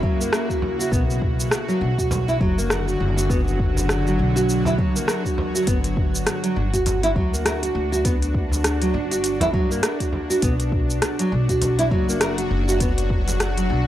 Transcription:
Already playing: synth drone C#3 A#3 E4 F#4
0.03 upright bass F#2, nylon-string guitar F#3, kick
0.20 nylon-string guitar A#3, cabasa
0.33 nylon-string guitar A#4, cross-stick, cabasa
0.50 nylon-string guitar F#4, kick, cabasa
0.62 frame drum
0.79 nylon-string guitar F#4, cabasa
0.92 upright bass B1, synth drone D3 F#3, nylon-string guitar B3, kick, cabasa
1.10 cabasa
1.22 kick
1.40 cabasa
1.51 cross-stick, cabasa
1.68 nylon-string guitar F#3, cabasa
1.81 upright bass B1, nylon-string guitar D4
1.98 nylon-string guitar F#4, kick, cabasa
2.11 frame drum, cabasa
2.28 nylon-string guitar E4, cabasa
2.41 upright bass F#1, nylon-string guitar F#3, kick
2.58 nylon-string guitar A#3, cabasa
2.70 nylon-string guitar A#4, cross-stick, cabasa
2.88 nylon-string guitar F#4, cabasa
3.00 upright bass F#1
3.17 nylon-string guitar F#4, cabasa
3.30 nylon-string guitar B3, synth drone C#5, kick, cabasa
3.48 cabasa
3.59 kick
3.77 frame drum, cabasa
3.89 cross-stick, cabasa
4.06 nylon-string guitar F#3, cabasa
4.19 upright bass B1, nylon-string guitar D4
4.36 nylon-string guitar F#4, cabasa
4.49 cabasa
4.65 nylon-string guitar E4, frame drum, cabasa
4.78 upright bass F#1, nylon-string guitar F#3, kick
4.96 nylon-string guitar A#3, cabasa
5.08 nylon-string guitar A#4, cross-stick, cabasa
5.25 nylon-string guitar F#4, kick, cabasa
5.38 frame drum
5.55 nylon-string guitar F#4, cabasa
5.67 upright bass G1, nylon-string guitar B3, synth drone D4, kick, closed hi-hat, cabasa
5.84 closed hi-hat, cabasa
5.97 kick
6.15 cabasa
6.27 cross-stick, closed hi-hat, cabasa
6.44 nylon-string guitar F#3, closed hi-hat, cabasa
6.56 upright bass G1, nylon-string guitar D4
6.73 nylon-string guitar F#4, kick, closed hi-hat, cabasa
6.86 closed hi-hat, frame drum, cabasa
7.03 nylon-string guitar E4, closed hi-hat, cabasa
7.16 upright bass D2, nylon-string guitar F#3, kick
7.33 nylon-string guitar A#3, cabasa
7.45 nylon-string guitar A#4, cross-stick, closed hi-hat, cabasa
7.63 nylon-string guitar F#4, closed hi-hat, cabasa
7.75 upright bass D2
7.92 nylon-string guitar F#4, cabasa
8.05 nylon-string guitar B3, kick, closed hi-hat, cabasa
8.22 closed hi-hat, cabasa
8.34 kick
8.51 frame drum, cabasa
8.64 cross-stick, closed hi-hat, cabasa
8.81 nylon-string guitar F#3, closed hi-hat, cabasa
8.94 upright bass G1, nylon-string guitar D4
9.11 nylon-string guitar F#4, closed hi-hat, cabasa
9.24 closed hi-hat, cabasa
9.41 nylon-string guitar E4, closed hi-hat, frame drum, cabasa
9.53 upright bass G2, nylon-string guitar F#3, kick
9.71 nylon-string guitar A#3, cabasa
9.83 nylon-string guitar A#4, cross-stick, closed hi-hat, cabasa
10.00 nylon-string guitar F#4, kick, closed hi-hat, cabasa
10.13 frame drum
10.30 nylon-string guitar F#4, cabasa
10.42 upright bass B1, synth drone F#3 F#4, nylon-string guitar B3, kick, closed hi-hat, cabasa
10.60 closed hi-hat, cabasa
10.72 kick
10.90 cabasa
11.02 cross-stick, closed hi-hat, cabasa
11.19 nylon-string guitar F#3, closed hi-hat, cabasa
11.32 upright bass B1, nylon-string guitar D4
11.49 nylon-string guitar F#4, kick, closed hi-hat, cabasa
11.62 closed hi-hat, frame drum, cabasa
11.79 nylon-string guitar E4, closed hi-hat, cabasa
11.91 upright bass F#1, nylon-string guitar F#3, kick
12.09 nylon-string guitar A#3, cabasa
12.21 nylon-string guitar A#4, cross-stick, closed hi-hat, cabasa
12.38 nylon-string guitar F#4, closed hi-hat, cabasa
12.51 upright bass F#1
12.68 nylon-string guitar F#4, cabasa
12.80 nylon-string guitar B3, kick, closed hi-hat, cabasa
12.98 closed hi-hat, cabasa
13.10 kick
13.28 closed hi-hat, frame drum, cabasa
13.40 cross-stick, closed hi-hat, cabasa
13.57 nylon-string guitar F#3, closed hi-hat, cabasa
13.70 upright bass B1, nylon-string guitar D4

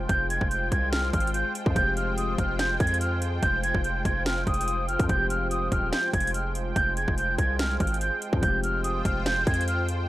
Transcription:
Already playing: grand piano F3 G#3 C4 G4, analog synth pad G#3 F4 C5 G5
0.09 808-style bass F1, flute G6, kick, closed hi-hat
0.30 flute G#6, closed hi-hat
0.41 808-style bass F1, kick
0.51 flute G6, closed hi-hat
0.72 808-style bass C2, flute G#6, kick, closed hi-hat
0.92 flute F6, snare, closed hi-hat
1.13 808-style bass G#1, flute F6, kick, closed hi-hat
1.20 closed hi-hat
1.27 closed hi-hat
1.34 flute G6, closed hi-hat
1.55 closed hi-hat
1.66 808-style bass F2, grand piano F3, kick
1.74 808-style bass F1, grand piano G#3 C4, flute G6, kick, closed hi-hat
1.82 grand piano G4
1.97 flute F6, closed hi-hat
2.17 flute D#6, closed hi-hat
2.38 808-style bass F1, flute F6, kick, closed hi-hat
2.59 flute G6, snare, closed hi-hat
2.80 808-style bass F2, flute G#6, kick, closed hi-hat
2.87 closed hi-hat
2.94 closed hi-hat
3.01 flute F6, closed hi-hat
3.22 closed hi-hat
3.43 808-style bass F1, flute G6, kick, closed hi-hat
3.63 flute G#6, closed hi-hat
3.74 808-style bass F1, kick
3.84 flute G6, closed hi-hat
4.05 808-style bass F1, flute G#6, kick, closed hi-hat
4.26 flute F6, snare, closed hi-hat
4.47 808-style bass F1, flute D#6, kick, closed hi-hat
4.54 closed hi-hat
4.61 closed hi-hat
4.68 closed hi-hat
4.89 flute F6, closed hi-hat
4.99 808-style bass F2, grand piano F3, kick, closed hi-hat
5.07 808-style bass F1, grand piano G#3 C4, analog synth pad G#3, flute G6, kick, closed hi-hat
5.15 grand piano G4
5.30 flute F6, closed hi-hat
5.51 flute D#6, closed hi-hat
5.72 808-style bass D#1, flute F6, kick, closed hi-hat
5.93 flute G6, snare, closed hi-hat
6.13 808-style bass F1, flute G#6, kick, closed hi-hat
6.20 closed hi-hat
6.27 closed hi-hat
6.34 flute F6, closed hi-hat
6.55 closed hi-hat
6.76 808-style bass F1, flute G6, kick, closed hi-hat
6.97 flute G#6, closed hi-hat
7.08 808-style bass F1, kick
7.18 flute G6, closed hi-hat
7.38 808-style bass C2, flute G#6, kick, closed hi-hat
7.59 flute F6, snare, closed hi-hat
7.80 808-style bass G#1, flute F6, kick, closed hi-hat
7.87 closed hi-hat
7.94 closed hi-hat
8.01 flute G6, closed hi-hat
8.22 closed hi-hat
8.33 808-style bass F2, grand piano F3, kick
8.41 808-style bass F1, grand piano G#3 C4, analog synth pad F4 C5 G5, flute G6, kick, closed hi-hat
8.49 grand piano G4
8.64 flute F6, closed hi-hat
8.84 flute D#6, closed hi-hat
9.05 808-style bass F1, flute F6, kick, closed hi-hat
9.26 flute G6, snare, closed hi-hat
9.47 808-style bass F2, flute G#6, kick, closed hi-hat
9.54 closed hi-hat
9.61 closed hi-hat
9.68 flute F6, closed hi-hat
9.89 closed hi-hat

